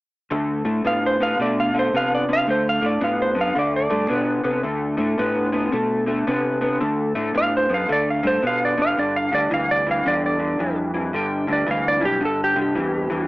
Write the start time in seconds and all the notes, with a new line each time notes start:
0.31 D2 D3 A3
0.65 A2 D3 A3
0.85 A2 D3 B3 F5
1.06 C5
1.20 D3 B3 F5
1.39 B2 D3 A3 D5
1.60 F5
1.74 D3 A3
1.79 C5
1.94 C3 D3 B3 F5
2.15 D5
2.29 D3 B3
2.33 F5
2.47 D2 D3 A3 C5
2.69 F5
2.82 A2 D3 A3
2.86 D5
3.01 A2 D3 B3 F5
3.22 C5
3.35 F#2 D3 B3
3.41 F5
3.55 D2 D3 A3 D5
3.76 D5
3.90 G2 D3 A3
4.09 B2 D3 B3
4.44 C3 D3 B3
4.63 D2 D3 A3
4.97 A2 D3 A3
5.18 A2 D3 B3
5.52 D3 B3
5.72 B2 D3 A3
6.06 D3 A3
6.27 C3 D3 B3
6.61 D3 B3
6.80 D2 D3 A3
7.15 A2 D3 A3
7.35 A2 D3 B3 F5
7.57 C5
7.69 F#2 D3 B3
7.74 F5
7.89 D2 D3 A3 D5
8.10 F5
8.23 G2 D3 A3 C5
8.42 B2 D3 B3
8.47 F5
8.65 D5
8.77 F#1 D3 B3
8.82 F5
8.97 G1 G2 D3 D5
9.16 F5
9.31 D2 G2 D3 D5
9.50 D2 G2 E3 F5
9.71 D5
9.86 G2 E3
9.91 F5
10.05 E2 G2 D3 D5
10.26 D5
10.39 G2 D3
10.59 F2 G2 E3
10.94 G2 E3
11.13 G1 G2 D3 G5
11.47 D2 G2 D3
11.53 D5
11.66 D2 G2 E3
11.71 F5
11.88 D5
12.00 B1 G2 E3
12.05 G4
12.20 G1 G2 D3
12.25 A4
12.44 G4
12.56 C2 G2 D3
12.61 G4
12.75 E2 G2 E3
13.10 E2 G2 E3